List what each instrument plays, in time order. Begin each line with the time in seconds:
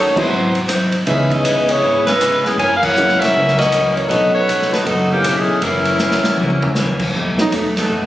Already playing: upright bass D#2, steel-string acoustic guitar D#3 A3 C#4 F#4, saxophone section A3 D#4 F#4 C#5
0.16 upright piano F#3 G#3 B3 C4 E4, saxophone section F#3 E4 B4 C5, muted upright bass stroke, kick, crash
0.29 upright bass G#1, steel-string acoustic guitar G#2 F#3 C4 E4
0.55 ride
0.66 steel-string acoustic guitar G#2 F#3 C4 E4, cross-stick, hi-hat pedal, ride
0.92 ride
1.06 upright bass C#2, steel-string acoustic guitar C#3 G#3 B3 E4, upright piano E3 G#3 B3 C#4 D#4, saxophone section C#4 G#4 B4 E5, ride
1.30 saxophone section C#4 G#4 B4 D#5, kick, ride
1.45 steel-string acoustic guitar C#3 G#3 B3 E4, hi-hat pedal, ride
1.69 saxophone section B3 E4 G#4 C#5, ride
1.81 upright bass G#1, steel-string acoustic guitar C#3 G#3 B3
1.86 steel-string acoustic guitar E4
2.07 saxophone section G#3 C#4 E4 B4, snare, ride
2.21 steel-string acoustic guitar C#3 G#3 B3 E4, cross-stick, hi-hat pedal, ride
2.44 saxophone section E3 B3 C#4 G#4, snare
2.58 upright bass F#1, steel-string acoustic guitar F#2 E3 A#3, saxophone section E4 A#4 C#5 G#5, ride
2.63 steel-string acoustic guitar C#4
2.76 saxophone section F5
2.83 saxophone section E4 A#4 C#5 F#5, kick, crash
2.95 steel-string acoustic guitar F#2 E3 A#3 C#4, upright piano F#3 G#3 A#3 C#4 E4, hi-hat pedal
3.09 snare
3.19 saxophone section C#4 F#4 A#4 E5, snare, ride
3.33 upright bass C#2, steel-string acoustic guitar F#2 E3
3.38 steel-string acoustic guitar A#3 C#4
3.48 snare
3.57 saxophone section C#4 F#4 A#4 D#5, snare, ride
3.72 steel-string acoustic guitar F#2 E3 A#3 C#4, cross-stick, hi-hat pedal, ride
3.95 saxophone section A#3 E4 F#4 C#5, ride
4.07 upright bass B1, steel-string acoustic guitar B2 F#3, upright piano F#3, saxophone section B3 F#4 A4 D#5, ride
4.11 upright piano A3 B3 C#4 D#4, steel-string acoustic guitar A3 D#4
4.32 saxophone section B3 F#4 A4 C#5
4.48 steel-string acoustic guitar B2 F#3 A3 D#4, hi-hat pedal, ride
4.62 snare
4.71 saxophone section A3 D#4 F#4 B4, muted upright bass stroke, snare, ride
4.85 upright bass F#1, steel-string acoustic guitar B2 F#3, saxophone section F#3 B3 D#4 A4, ride
4.89 steel-string acoustic guitar A3 D#4
5.10 saxophone section E3 A#3 C#4 G4
5.24 steel-string acoustic guitar B2 F#3 A3 D#4, cross-stick, hi-hat pedal, ride
5.37 saxophone section E3 A3 C#4 G#4
5.48 muted upright bass stroke
5.61 upright bass F#1, steel-string acoustic guitar F#2 E3, saxophone section F#3 C#4 E4 A#4, ride
5.65 steel-string acoustic guitar A#3 C#4
5.85 ride
5.99 steel-string acoustic guitar F#2 E3 A#3 C#4, snare, hi-hat pedal
6.11 snare
6.24 muted upright bass stroke, snare
6.37 upright bass C#2, steel-string acoustic guitar F#2 E3 A#3 C#4, high tom
6.50 high tom
6.62 floor tom
6.75 steel-string acoustic guitar F#2 E3 A#3 C#4, snare, hi-hat pedal
6.99 kick, crash
7.13 upright bass D#2, steel-string acoustic guitar B2 F#3 A3 D#4
7.38 upright piano F#3 A3 B3 C#4 D#4, tenor saxophone D#4, snare
7.52 upright bass E2, steel-string acoustic guitar B2 F#3 A3 D#4, tenor saxophone A3, hi-hat pedal, ride
7.77 saxophone section F#3 B3 D#4 A4, snare, ride
7.89 upright bass F#2, steel-string acoustic guitar B2 F#3 A3 D#4